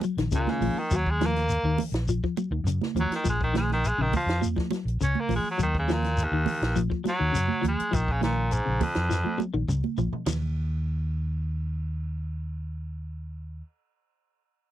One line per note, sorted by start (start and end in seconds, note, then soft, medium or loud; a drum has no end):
0.01 0.17 F#3 medium
0.01 closed hi-hat soft
0.01 high conga medium
0.01 shekere soft
0.17 0.30 A#1 medium
0.17 0.31 D#3 medium
0.17 snare soft
0.17 closed hi-hat soft
0.31 0.46 C#2 medium
0.31 0.51 A#2 medium
0.31 0.59 C#3 medium
0.31 0.79 D#3 medium
0.31 0.78 G#3 medium
0.31 0.79 C#4 medium
0.31 0.79 F4 medium
0.31 kick medium
0.31 closed hi-hat medium
0.31 shekere medium
0.47 0.80 C#3 medium
0.47 snare soft
0.47 high conga medium
0.61 0.74 A#1 medium
0.61 0.88 F3 medium
0.61 open hi-hat medium
0.61 high conga medium
0.61 low conga medium
0.61 shekere soft
0.79 0.98 D#3 medium
0.91 1.57 D#2 medium
0.91 1.18 F#3 medium
0.91 kick medium
0.91 closed hi-hat medium
0.91 shekere medium
0.96 1.12 F#3 medium
1.06 1.27 G#3 medium
1.06 kick medium
1.21 1.46 F3 medium
1.21 snare medium
1.21 closed hi-hat soft
1.21 high conga medium
1.21 shekere soft
1.26 1.80 A#3 medium
1.36 snare soft
1.36 closed hi-hat soft
1.49 closed hi-hat medium
1.49 shekere medium
1.63 1.76 D#2 medium
1.63 1.91 D#3 medium
1.78 open hi-hat medium
1.78 high conga medium
1.78 low conga medium
1.78 shekere soft
1.92 2.19 A#1 medium
1.92 snare medium
1.92 closed hi-hat medium
2.08 2.22 F3 medium
2.08 closed hi-hat medium
2.08 shekere medium
2.24 2.36 F3 medium
2.24 kick medium
2.37 2.51 F#3 medium
2.37 closed hi-hat soft
2.37 high conga medium
2.37 shekere soft
2.51 2.63 D#2 medium
2.51 2.65 D#3 medium
2.64 2.78 F#2 medium
2.64 2.93 C#3 medium
2.64 closed hi-hat medium
2.64 shekere medium
2.81 snare soft
2.81 high conga medium
2.95 3.09 D#2 medium
2.95 3.22 F3 medium
2.95 closed hi-hat soft
2.95 high conga medium
2.95 low conga medium
2.95 shekere soft
3.00 3.12 F#3 medium
3.12 3.26 D#3 medium
3.12 snare soft
3.12 closed hi-hat soft
3.24 3.91 A#1 medium
3.24 3.50 F3 medium
3.24 kick medium
3.24 closed hi-hat medium
3.24 shekere medium
3.29 3.41 G#3 medium
3.41 3.55 D#3 medium
3.41 kick medium
3.53 3.80 D#3 medium
3.53 3.70 G#3 medium
3.53 snare medium
3.53 closed hi-hat soft
3.53 high conga medium
3.53 shekere soft
3.70 3.89 D#3 medium
3.70 snare soft
3.70 low conga medium
3.85 4.03 G#3 medium
3.85 closed hi-hat medium
3.85 shekere medium
3.98 4.11 A#1 medium
3.98 4.24 C#3 medium
3.98 4.13 D#3 medium
4.13 4.43 F3 medium
4.13 kick medium
4.13 open hi-hat medium
4.13 high conga medium
4.13 low conga medium
4.13 shekere soft
4.26 4.53 F2 medium
4.26 snare medium
4.26 closed hi-hat soft
4.41 4.55 F3 medium
4.41 closed hi-hat medium
4.41 high conga medium
4.41 shekere medium
4.56 4.69 F3 medium
4.56 kick medium
4.56 snare soft
4.56 high conga medium
4.71 4.85 F#3 medium
4.71 snare soft
4.71 closed hi-hat soft
4.71 high conga medium
4.71 shekere soft
4.85 4.98 A#1 medium
4.85 closed hi-hat soft
5.01 5.14 C#2 medium
5.01 5.27 C#3 medium
5.01 5.21 C#4 medium
5.01 kick medium
5.01 closed hi-hat medium
5.01 shekere medium
5.15 high conga medium
5.20 5.31 A#3 medium
5.29 5.43 A#1 medium
5.29 5.55 F3 medium
5.29 open hi-hat medium
5.29 high conga medium
5.29 low conga medium
5.29 shekere soft
5.35 5.47 G#3 medium
5.51 5.61 F#3 medium
5.58 6.25 D#2 medium
5.58 5.84 F#3 medium
5.58 kick medium
5.58 closed hi-hat medium
5.58 shekere medium
5.63 5.75 D#3 medium
5.75 kick medium
5.79 5.94 C#3 medium
5.88 6.14 F3 medium
5.88 snare medium
5.88 closed hi-hat soft
5.88 high conga medium
5.88 shekere soft
5.93 6.25 A#2 medium
6.03 snare soft
6.03 closed hi-hat soft
6.03 low conga medium
6.17 closed hi-hat medium
6.17 shekere medium
6.24 6.78 D#2 medium
6.32 6.45 D#2 medium
6.32 6.59 D#3 medium
6.46 open hi-hat medium
6.46 high conga medium
6.46 low conga medium
6.46 shekere soft
6.62 6.88 A#1 medium
6.62 snare medium
6.62 closed hi-hat soft
6.75 6.89 F3 medium
6.75 closed hi-hat medium
6.75 high conga medium
6.75 shekere medium
6.90 7.03 F3 medium
6.90 kick medium
7.04 7.18 F#3 medium
7.04 snare soft
7.04 closed hi-hat soft
7.04 high conga medium
7.04 shekere soft
7.08 7.64 F#3 medium
7.19 7.33 D#2 medium
7.19 7.32 D#3 medium
7.32 7.48 F#2 medium
7.32 7.59 C#3 medium
7.32 closed hi-hat medium
7.32 shekere medium
7.48 high conga medium
7.61 7.77 D#2 medium
7.61 7.88 F3 medium
7.61 closed hi-hat soft
7.61 high conga medium
7.61 low conga medium
7.61 shekere soft
7.68 7.96 G#3 medium
7.80 closed hi-hat soft
7.91 8.59 A#1 medium
7.91 8.13 D#3 medium
7.91 8.18 F3 medium
7.91 kick medium
7.91 closed hi-hat medium
7.91 shekere medium
8.08 8.23 C#3 medium
8.08 kick medium
8.21 8.54 A#2 medium
8.21 8.48 D#3 medium
8.21 snare medium
8.21 closed hi-hat soft
8.21 high conga medium
8.21 shekere soft
8.51 8.85 G#2 medium
8.51 closed hi-hat medium
8.51 shekere medium
8.66 8.80 A#1 medium
8.66 8.92 C#3 medium
8.80 9.38 F2 medium
8.80 kick medium
8.80 open hi-hat medium
8.80 high conga medium
8.80 low conga medium
8.80 shekere soft
8.95 9.22 F2 medium
8.95 snare medium
8.95 closed hi-hat soft
9.09 9.23 F3 medium
9.09 snare soft
9.09 shekere medium
9.24 9.37 F3 medium
9.24 high conga medium
9.38 9.52 F#3 medium
9.38 high tom medium
9.38 high conga medium
9.38 shekere soft
9.53 9.67 A#1 medium
9.53 9.66 D#3 medium
9.53 high tom soft
9.68 9.82 C#2 medium
9.68 9.95 C#3 medium
9.68 kick medium
9.68 mid tom medium
9.68 shekere medium
9.84 high conga medium
9.98 10.11 A#1 medium
9.98 10.23 F3 medium
9.98 floor tom medium
9.98 low conga medium
9.98 shekere soft
10.13 muted fingered electric bass stroke soft
10.13 floor tom medium
10.26 13.61 D#2 medium
10.26 muted clean electric guitar stroke medium
10.26 snare medium
10.26 floor tom medium
10.26 ride bell medium
10.26 low conga medium
10.26 shekere medium